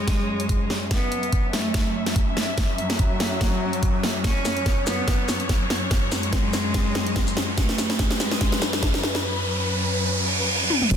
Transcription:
Already playing: string section F#2 F#3 C#4 C#5, cello G#3, riser
0.08 kick, snare, closed hi-hat
0.40 closed hi-hat
0.49 kick, closed hi-hat
0.70 snare
0.91 cello B3, string section E5, kick, snare, closed hi-hat
1.12 closed hi-hat
1.23 closed hi-hat
1.33 kick, closed hi-hat
1.53 cello A3, snare, closed hi-hat
1.74 kick, snare, closed hi-hat
2.06 snare, closed hi-hat
2.16 kick, closed hi-hat
2.37 snare
2.58 kick, snare, closed hi-hat
2.78 cello F#3, closed hi-hat
2.90 snare, closed hi-hat
2.99 kick, closed hi-hat
3.20 snare, closed hi-hat
3.41 kick, snare, closed hi-hat
3.73 closed hi-hat
3.83 kick, closed hi-hat
4.03 snare
4.24 cello C#4, string section C#5, kick, snare, closed hi-hat
4.45 snare, closed hi-hat, shaker
4.57 closed hi-hat
4.66 kick, snare, closed hi-hat
4.87 cello B3, snare, closed hi-hat, shaker
5.08 kick, snare, closed hi-hat
5.29 snare, shaker
5.40 closed hi-hat
5.49 kick, snare, closed hi-hat
5.70 snare
5.91 kick, snare, closed hi-hat
6.12 cello G#3, snare, closed hi-hat, shaker
6.23 closed hi-hat
6.33 kick, snare, closed hi-hat
6.53 snare, closed hi-hat, shaker
6.74 kick, snare, closed hi-hat
6.95 snare
7.07 closed hi-hat
7.16 kick, snare, closed hi-hat
7.27 shaker
7.37 snare
7.58 cello A3, string section B4, kick, snare, closed hi-hat
7.69 snare
7.78 snare, closed hi-hat, shaker
7.90 snare, closed hi-hat
7.99 kick, snare, closed hi-hat
8.11 snare
8.20 cello G#3, snare, closed hi-hat, shaker
8.31 snare
8.41 kick, snare, closed hi-hat
8.52 snare
8.62 snare, shaker
8.73 snare, closed hi-hat
8.83 kick, snare, closed hi-hat
8.94 snare
9.03 snare
9.15 snare
10.08 reverse cymbal
10.70 high tom
10.82 mid tom
10.91 wobble bass F#1, string section F#3 A3 C#4, kick, closed hi-hat, crash, impact

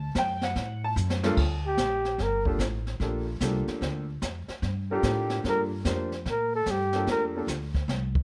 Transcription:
Already playing: upright bass D2, upright piano A5
0.15 upright bass F#2, upright piano G5, kick, snare, hi-hat pedal
0.42 upright piano F#5, snare
0.55 upright bass A2, brush sweep, kick, snare
0.84 upright piano A5
0.96 upright bass F#2, hi-hat pedal
1.10 snare
1.23 upright piano G2 A#3 D4 F4 A4, snare
1.37 upright bass D2, brush sweep, kick, snare, crash
1.67 flugelhorn G4
1.77 upright bass A#1, kick, snare, hi-hat pedal
2.05 snare
2.18 upright bass G1, brush sweep, kick, snare
2.22 flugelhorn A#4
2.45 upright piano A#3 D4 F4 G4 A4, kick
2.59 upright bass A1, kick, snare, hi-hat pedal
2.87 snare
3.00 upright bass A#1, upright piano A#3 D4 F4 G4 A4, brush sweep, kick, snare
3.40 upright bass C2, upright piano A#3 D4 F4 G4 A4, kick, snare, hi-hat pedal
3.67 muted upright bass stroke, snare
3.81 upright bass D2, brush sweep, kick, snare
4.22 upright bass F2, kick, snare, hi-hat pedal
4.48 muted upright bass stroke, snare
4.62 upright bass G2, brush sweep, kick, snare
4.91 upright piano D4 F4 G4 A4 A#4, flugelhorn G4
5.03 upright bass A2, kick, snare, hi-hat pedal
5.30 snare
5.44 upright bass G2, upright piano A#3 D4 F4 G4 A4, brush sweep, kick, snare
5.49 flugelhorn A#4
5.85 upright bass F2, upright piano A#3 D4 F4 G4 C5, kick, snare, hi-hat pedal
6.12 snare
6.25 upright bass A#2, brush sweep, kick, snare
6.30 flugelhorn A#4
6.55 flugelhorn A4
6.66 upright bass G2, kick, snare, hi-hat pedal
6.71 flugelhorn G4
6.93 upright piano A#3 D4 F4 G4 A4, snare
7.07 upright bass F2, brush sweep, kick, snare
7.11 flugelhorn A#4
7.36 upright piano A#3 D4 F4 G4 A4
7.47 upright bass D2, kick, snare, hi-hat pedal
7.75 kick, snare
7.88 upright bass C2, snare
8.15 kick

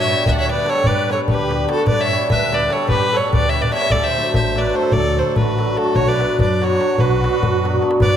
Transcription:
Already playing: accordion C#5
0.00 fiddle E5
0.07 hammered dulcimer G3 B3 D4 G4, darbuka tek
0.26 upright bass D2, accordion B4, fiddle E5, darbuka dum
0.31 accordion D5, fiddle F#5
0.39 accordion C#5, fiddle E5
0.48 hammered dulcimer G3 B3 D4 G4, accordion B4, fiddle D5, darbuka tek
0.58 darbuka tek
0.64 hammered dulcimer G3 B3 D4 G4, accordion A4, darbuka tek
0.69 fiddle C#5
0.84 upright bass G2, accordion B4, fiddle D5, darbuka dum
0.96 darbuka tek
1.08 hammered dulcimer G3 B3 D4 G4, accordion A4, fiddle C#5, darbuka tek
1.28 upright bass D2, accordion G4, fiddle B4, darbuka dum
1.49 hammered dulcimer G3 B3 D4 G4, darbuka tek
1.60 darbuka tek
1.69 hammered dulcimer G3 B3 D4 G4, accordion F#4, fiddle A4, darbuka tek
1.87 upright bass G2, accordion B4, fiddle D5, darbuka dum
1.98 accordion C#5, fiddle E5, darbuka tek
2.11 hammered dulcimer G3 B3 D4 G4
2.30 upright bass D2, accordion B4, fiddle E5, darbuka dum
2.52 hammered dulcimer G3 B3 D4 G4, accordion B4, fiddle D5, darbuka tek
2.62 darbuka tek
2.69 hammered dulcimer G3 B3 D4 G4, accordion A4, fiddle C#5, darbuka tek
2.87 upright bass G2, accordion G4, fiddle B4, darbuka dum
3.02 darbuka tek
3.12 hammered dulcimer G3 B3 D4 G4, accordion A4, darbuka tek
3.16 fiddle C#5
3.25 darbuka tek
3.33 upright bass D2, accordion B4, fiddle D5, darbuka dum
3.45 accordion C#5, darbuka tek
3.49 fiddle E5
3.53 hammered dulcimer G3 B3 D4 G4, darbuka dum
3.60 accordion B4, fiddle D5, darbuka dum
3.71 hammered dulcimer G3 B3 D4 G4, accordion C#5, fiddle E5, darbuka tek
3.81 darbuka tek
3.89 upright bass D2, accordion A4, fiddle D5, darbuka dum
4.03 accordion C5, fiddle E5, darbuka tek
4.16 hammered dulcimer F#3 A3 D4 F#4
4.34 upright bass A1, accordion C5, fiddle E5, darbuka dum
4.55 hammered dulcimer F#3 A3 D4 F#4, accordion B4, fiddle D5, darbuka tek
4.65 darbuka tek
4.74 hammered dulcimer F#3 A3 D4 F#4, accordion A4, fiddle C5, darbuka tek
4.92 upright bass D2, accordion A4, fiddle D5, darbuka dum
5.05 darbuka tek
5.17 hammered dulcimer F#3 A3 D4 F#4, accordion A4, fiddle C5, darbuka tek
5.36 upright bass A1, accordion F#4, fiddle B4, darbuka dum
5.58 hammered dulcimer F#3 A3 D4 F#4, darbuka tek
5.67 darbuka tek
5.76 hammered dulcimer F#3 A3 D4 F#4, accordion F#4, fiddle A4, darbuka tek
5.95 upright bass B1, accordion F#4, fiddle C#5, darbuka dum
6.07 accordion B4, fiddle D5, darbuka tek
6.19 hammered dulcimer F#3 B3 D4 F#4, darbuka tek
6.39 upright bass F#2, accordion B4, fiddle D5, darbuka dum
6.61 hammered dulcimer F#3 B3 D4 F#4, accordion F#4, fiddle C#5, darbuka tek
6.71 darbuka tek
6.79 hammered dulcimer F#3 B3 D4 F#4, darbuka tek
6.98 upright bass B1, accordion F#4, fiddle B4, darbuka dum
7.12 darbuka tek
7.22 hammered dulcimer F#3 B3 D4 F#4, darbuka tek
7.34 darbuka tek
7.43 upright bass F#2, darbuka dum
7.63 hammered dulcimer F#3 B3 D4 F#4, darbuka tek
7.74 darbuka dum
7.81 hammered dulcimer F#3 B3 D4 F#4, darbuka tek
7.91 darbuka tek
8.00 upright bass G2, accordion B4, fiddle D5, darbuka dum
8.13 darbuka tek

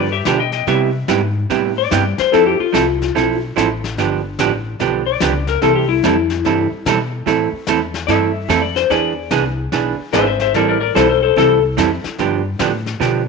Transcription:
Already playing: upright bass G2
0.00 electric slide guitar B4 D5
0.12 electric slide guitar G4 E5
0.25 upright bass B2, hollow-body jazz guitar D3 F3 B3 D4 G4, electric slide guitar G4 E5, snare, hi-hat pedal
0.40 electric slide guitar D#5 G5
0.52 electric slide guitar D#5 G5, snare
0.67 upright bass C3, hollow-body jazz guitar C3 G3 B3 E4 G4, electric slide guitar E5, brush sweep, snare
1.08 upright bass G#2, hollow-body jazz guitar C3 G3 B3 E4 G4, snare, hi-hat pedal
1.50 upright bass A2, hollow-body jazz guitar C3 G3 B3 E4 G4, brush sweep, snare
1.78 electric slide guitar D5
1.91 upright bass G2, hollow-body jazz guitar C3 G3 B3 E4 G4, snare, hi-hat pedal
2.18 electric slide guitar C5, muted upright bass stroke, snare
2.32 upright bass F2, hollow-body jazz guitar F3 C4 E4 A4, electric slide guitar A4, brush sweep, snare
2.47 electric slide guitar G4
2.60 electric slide guitar F4, muted upright bass stroke
2.73 upright bass C2, hollow-body jazz guitar F3 C4 E4 A4, snare, hi-hat pedal
3.02 snare
3.15 upright bass B1, hollow-body jazz guitar F3 C4 E4 A4, brush sweep, snare
3.56 upright bass A1, hollow-body jazz guitar F3 C4 E4 A4, snare, hi-hat pedal
3.84 snare
3.97 upright bass G1, hollow-body jazz guitar D3 F3 B3 D4 G4, brush sweep, snare
4.39 upright bass A1, hollow-body jazz guitar D3 F3 B3 D4 G4, snare, hi-hat pedal
4.79 upright bass B1, hollow-body jazz guitar D3 F3 B3 D4 G4, brush sweep, snare
5.07 electric slide guitar D5
5.20 upright bass C#2, hollow-body jazz guitar D3 F3 B3 D4 G4, snare, hi-hat pedal
5.47 electric slide guitar A#4, snare
5.62 upright bass C2, hollow-body jazz guitar C3 E3 G3 C4 E4 A4, electric slide guitar A4, brush sweep, snare
5.75 electric slide guitar G4
5.89 electric slide guitar E4
6.03 upright bass F2, hollow-body jazz guitar C3 E3 G3 C4 E4 A4, snare, hi-hat pedal
6.30 snare
6.44 upright bass G2, hollow-body jazz guitar C3 E3 G3 C4 E4 A4, brush sweep, snare
6.71 muted upright bass stroke
6.85 upright bass B2, hollow-body jazz guitar C3 E3 G3 C4 E4 A4, snare, hi-hat pedal
7.26 upright bass A2, hollow-body jazz guitar E3 A3 C4 E4 A4, brush sweep, snare
7.53 muted upright bass stroke
7.67 upright bass E2, hollow-body jazz guitar E3 A3 C4 E4 A4, snare, hi-hat pedal
7.94 snare
8.07 upright bass G2, hollow-body jazz guitar E3 A3 C4 E4 A4, electric slide guitar E5, brush sweep, snare
8.48 upright bass F2, hollow-body jazz guitar E3 A3 C4 E4 A4, snare, hi-hat pedal
8.62 electric slide guitar D5
8.76 electric slide guitar C5, snare
8.90 upright bass E2, hollow-body jazz guitar E3 B3 D4 G#4, electric slide guitar D5, brush sweep, snare
9.31 upright bass C2, hollow-body jazz guitar E3 B3 D4 G#4, snare, hi-hat pedal
9.72 upright bass B1, hollow-body jazz guitar E3 B3 D4 G#4, brush sweep, snare
9.98 muted upright bass stroke
10.13 upright bass G#1, hollow-body jazz guitar E3 B3 D4 G#4, electric slide guitar C5 E5, snare, hi-hat pedal
10.26 electric slide guitar C5 E5
10.40 electric slide guitar C5 E5, snare
10.54 upright bass A1, hollow-body jazz guitar E3 G3 C4 E4 A4, electric slide guitar A#4 D5, brush sweep, snare
10.69 electric slide guitar A#4 D5
10.80 electric slide guitar A#4 D5
10.95 upright bass B1, hollow-body jazz guitar E3 G3 C4 E4 A4, electric slide guitar A4 C5, snare, hi-hat pedal
11.09 electric slide guitar A4 C5
11.22 electric slide guitar A4 C5
11.36 upright bass C2, hollow-body jazz guitar E3 G3 C4 E4 A4, electric slide guitar A4, brush sweep, snare
11.77 upright bass F2, hollow-body jazz guitar E3 G3 C4 E4 A4, snare, hi-hat pedal
12.04 muted upright bass stroke, snare
12.18 upright bass G2, hollow-body jazz guitar D3 F3 B3 D4 G4, brush sweep, snare
12.59 upright bass A2, hollow-body jazz guitar D3 F3 B3 D4 G4, snare, hi-hat pedal
12.86 snare
13.00 upright bass B2, hollow-body jazz guitar D3 F3 B3 D4 G4, brush sweep, snare

